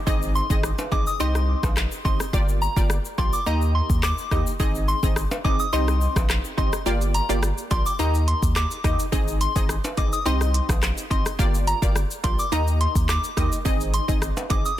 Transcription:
Already playing: downlifter
0.07 sub bass G#1, synth stab C4 D#4 G#4 D#5, kick, shaker
0.22 shaker
0.35 synth bell C6, shaker
0.50 sub bass G#1, synth stab C4 D#4 G#4 D#5, kick, shaker
0.63 cross-stick, shaker
0.79 high timbale, shaker
0.92 sub bass G#1, synth stab C4 D#4 G#4 D#5, synth bell D6, kick, shaker
1.07 synth bell D#6, shaker
1.20 sub bass C2, synth stab C4 D#4 G4 D#5, synth bell C6, shaker
1.35 cross-stick, shaker
1.63 sub bass A#1, kick, cross-stick, high timbale, shaker
1.77 cross-stick, clap, shaker
1.91 shaker
2.05 sub bass G#1, synth stab C4 D#4 G4 D#5, synth bell C6, kick, shaker
2.20 cross-stick, shaker
2.33 sub bass G1, synth stab A#3 F4 G4 D5, kick, shaker
2.49 shaker
2.62 synth bell A#5, shaker
2.76 sub bass G1, synth stab A#3 F4 G4 D5, kick, shaker
2.90 cross-stick, shaker
3.05 shaker
3.18 sub bass A#1, synth stab A#3 F4 G4 D5, synth bell C6, kick, shaker
3.33 synth bell D6, shaker
3.46 sub bass D#2, synth stab A#3 D#4 G4 D#5, synth bell A#5, shaker
3.62 shaker
3.75 synth bell C6
3.90 sub bass D#2, kick, shaker
4.03 synth bell D6, cross-stick, clap, shaker
4.18 shaker
4.31 sub bass D#2, synth stab A#3 D#4 G4 D#5, kick, cross-stick, shaker
4.47 shaker
4.60 sub bass G#1, synth stab C4 D#4 G#4 D#5, kick, shaker
4.75 shaker
4.88 synth bell C6, shaker
5.03 sub bass G#1, synth stab C4 D#4 G#4 D#5, kick, shaker
5.16 cross-stick, shaker
5.31 high timbale, shaker
5.44 sub bass G#1, synth stab C4 D#4 G#4 D#5, synth bell D6, kick, shaker
5.60 synth bell D#6, shaker
5.73 sub bass C2, synth stab C4 D#4 G4 D#5, synth bell C6, shaker
5.88 cross-stick, shaker
6.01 shaker
6.16 sub bass A#1, kick, cross-stick, high timbale, shaker
6.30 cross-stick, clap, shaker
6.44 shaker
6.58 sub bass G#1, synth stab C4 D#4 G4 D#5, synth bell C6, kick, shaker
6.73 cross-stick, shaker
6.86 sub bass G1, synth stab A#3 F4 G4 D5, shaker
7.01 shaker
7.14 synth bell A#5, closed hi-hat, shaker
7.29 sub bass G1, synth stab A#3 F4 G4 D5, shaker
7.43 cross-stick, shaker
7.58 shaker
7.71 sub bass A#1, synth stab A#3 F4 G4 D5, synth bell C6, kick, closed hi-hat, shaker
7.86 synth bell D6, shaker
7.99 sub bass D#2, synth stab A#3 D#4 G4 D#5, synth bell A#5, shaker
8.14 shaker
8.28 synth bell C6, closed hi-hat, shaker
8.42 sub bass D#2, kick, shaker
8.56 synth bell D6, cross-stick, clap, shaker
8.71 shaker
8.84 sub bass D#2, synth stab A#3 D#4 G4 D#5, kick, cross-stick, closed hi-hat, shaker
8.99 shaker
9.12 sub bass G#1, synth stab C4 D#4 G#4 D#5, kick, shaker
9.28 shaker
9.41 synth bell C6, closed hi-hat, shaker
9.56 sub bass G#1, synth stab C4 D#4 G#4 D#5, kick, shaker
9.69 cross-stick, shaker
9.84 high timbale, shaker
9.97 sub bass G#1, synth stab C4 D#4 G#4 D#5, synth bell D6, kick, closed hi-hat, shaker
10.13 synth bell D#6, shaker
10.25 sub bass C2, synth stab C4 D#4 G4 D#5, synth bell C6, shaker
10.41 cross-stick, shaker
10.54 closed hi-hat, shaker
10.69 sub bass A#1, kick, cross-stick, high timbale, shaker
10.83 cross-stick, clap, shaker
10.97 shaker
11.10 sub bass G#1, synth stab C4 D#4 G4 D#5, synth bell C6, kick, closed hi-hat, shaker
11.26 cross-stick, shaker
11.39 sub bass G1, synth stab A#3 F4 G4 D5, kick, shaker
11.54 shaker
11.67 synth bell A#5, closed hi-hat, shaker
11.82 sub bass G1, synth stab A#3 F4 G4 D5, kick, shaker
11.96 cross-stick, shaker
12.11 shaker
12.24 sub bass A#1, synth stab A#3 F4 G4 D5, synth bell C6, kick, closed hi-hat, shaker
12.39 synth bell D6, shaker
12.52 sub bass D#2, synth stab A#3 D#4 G4 D#5, synth bell A#5, shaker
12.67 shaker
12.81 synth bell C6, closed hi-hat, shaker
12.95 sub bass D#2, kick, shaker
13.09 synth bell D6, cross-stick, clap, shaker
13.24 shaker
13.37 sub bass D#2, synth stab A#3 D#4 G4 D#5, kick, cross-stick, closed hi-hat, shaker
13.52 shaker
13.65 sub bass G#1, synth stab C4 D#4 G#4 D#5, kick, shaker
13.81 shaker
13.94 synth bell C6, closed hi-hat, shaker
14.08 sub bass G#1, synth stab C4 D#4 G#4 D#5, kick, shaker
14.22 cross-stick, shaker
14.37 high timbale, shaker
14.50 sub bass G#1, synth stab C4 D#4 G#4 D#5, synth bell D6, kick, closed hi-hat, shaker
14.65 synth bell D#6, shaker

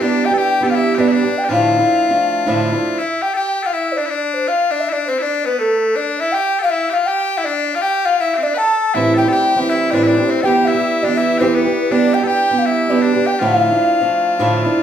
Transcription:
0.01 steel-string acoustic guitar G3 B3 D4 G4, bagpipes D4, ocarina D5
0.25 bagpipes G4, ocarina G5
0.30 steel-string acoustic guitar B3 D4 G4, bagpipes A4
0.38 bagpipes G4, ocarina G5
0.61 steel-string acoustic guitar G3 B3 D4 G4, bagpipes A4
0.69 bagpipes F4, ocarina F5
0.75 bagpipes E4, ocarina E5
0.95 steel-string acoustic guitar G3 B3, bagpipes D4 G4
0.99 steel-string acoustic guitar D4 G4, ocarina D5
1.08 bagpipes E4
1.12 bagpipes D4, ocarina D5
1.24 steel-string acoustic guitar B3 D4 G4
1.38 ocarina G5
1.44 bagpipes G4
1.49 steel-string acoustic guitar D2 A2 F3 A3 D4 E4, bagpipes F4, ocarina F5
1.79 steel-string acoustic guitar F3 A3 D4 E4
2.09 steel-string acoustic guitar F3 A3 D4
2.46 steel-string acoustic guitar D2 A2 F3 A3 D4 E4
2.73 steel-string acoustic guitar F3 A3 D4 E4
2.98 bagpipes E4, ocarina E5
3.22 bagpipes G4, ocarina G5
3.34 bagpipes G4 A4, ocarina G5
3.62 bagpipes F4 A4, ocarina F5
3.73 bagpipes E4, ocarina E5
3.92 ocarina C5
3.96 bagpipes D4, ocarina D5
4.06 bagpipes E4
4.10 bagpipes D4, ocarina D5
4.34 ocarina C5
4.48 bagpipes F4, ocarina F5
4.71 bagpipes D4, ocarina D5
4.80 ocarina E5
4.89 bagpipes D4 E4, ocarina D5
5.07 bagpipes C4, ocarina C5
5.19 bagpipes D4 E4, ocarina D5
5.46 bagpipes B3, ocarina B4
5.59 bagpipes A3, ocarina A4
5.96 bagpipes D4, ocarina D5
6.19 bagpipes E4, ocarina E5
6.32 bagpipes G4, ocarina G5
6.59 bagpipes G4 A4, ocarina F5
6.64 bagpipes F4
6.69 bagpipes E4, ocarina E5
6.90 bagpipes G4, ocarina F5
6.94 bagpipes F4
7.06 bagpipes G4, ocarina G5
7.37 bagpipes E4, ocarina E5
7.44 bagpipes D4, ocarina D5
7.75 bagpipes F4, ocarina F5
7.82 bagpipes G4, ocarina G5
8.05 bagpipes F4, ocarina F5
8.19 bagpipes E4, ocarina E5
8.34 bagpipes C4 G4
8.43 bagpipes D4, ocarina D5
8.54 bagpipes A4 B4, ocarina A5
8.94 steel-string acoustic guitar A2 E3 G3 C4 E4, bagpipes E4, ocarina E5
9.14 bagpipes G4 A4, ocarina G5
9.25 steel-string acoustic guitar G3 C4 E4, bagpipes A4
9.31 bagpipes G4, ocarina G5
9.56 steel-string acoustic guitar E3 G3 C4 E4
9.68 bagpipes E4, ocarina E5
9.90 steel-string acoustic guitar A2 E3 G3 C4 E4, bagpipes D4 G4, ocarina D5
10.03 bagpipes E4, ocarina D5
10.08 bagpipes D4
10.17 steel-string acoustic guitar G3 C4 E4
10.28 bagpipes C4, ocarina C5
10.41 steel-string acoustic guitar E3 G3 B3 G4, bagpipes G4 A4, ocarina G5
10.65 bagpipes E4, ocarina E5
10.73 steel-string acoustic guitar G3 B3 G4
11.03 steel-string acoustic guitar E3 G3 B3 G4, bagpipes D4, ocarina D5
11.15 bagpipes E4, ocarina E5
11.38 steel-string acoustic guitar E3 G3 B3, bagpipes C4 G4, ocarina C5
11.42 steel-string acoustic guitar G4
11.55 bagpipes B3, ocarina B4
11.65 steel-string acoustic guitar G3 B3 G4
11.91 steel-string acoustic guitar G3 B3 D4 G4, bagpipes D4, ocarina D5
12.13 bagpipes G4, ocarina G5
12.21 steel-string acoustic guitar B3 D4 G4, bagpipes A4
12.27 bagpipes G4, ocarina G5
12.51 steel-string acoustic guitar G3 B3 D4 G4
12.58 ocarina F5
12.66 bagpipes E4, ocarina E5
12.89 steel-string acoustic guitar G3 B3 D4 G4, ocarina D5
13.02 bagpipes D4, ocarina D5
13.14 steel-string acoustic guitar B3 D4 G4
13.26 bagpipes G4, ocarina G5
13.39 steel-string acoustic guitar D2 A2 F3 A3 D4 E4, bagpipes F4, ocarina F5
13.71 steel-string acoustic guitar F3 A3 D4 E4
14.01 steel-string acoustic guitar F3 A3 D4
14.39 steel-string acoustic guitar D2 A2 F3 A3 D4 E4
14.65 steel-string acoustic guitar F3 A3 D4 E4

